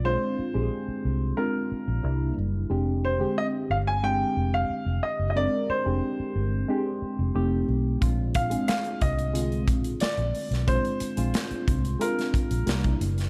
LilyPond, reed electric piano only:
\new Staff \with { instrumentName = "Reed electric piano" } { \time 4/4 \key f \dorian \tempo 4 = 90 <aes c' d' f'>8. <aes c' d' g' aes'>4 r16 <aes c' d' f'>4 <g bes d' e'>4 | <aes c' d' g'>8. <d aes c' g'>4 r16 <aes c' d' g'>4.~ <aes c' d' g'>16 r16 | <aes c' d' bes'>8. <aes c' d' g'>4 r16 <aes c' d' g'>4 <a c' ees' g'>4 | <aes c' d' f'>8. <aes c' d' aes'>4 r16 <d aes c' f'>4.~ <d aes c' f'>16 r16 |
<aes c' d' f'>8. <aes c' d' f'>4 r16 <aes c' d' f'>4 <g bes d' e'>4 | }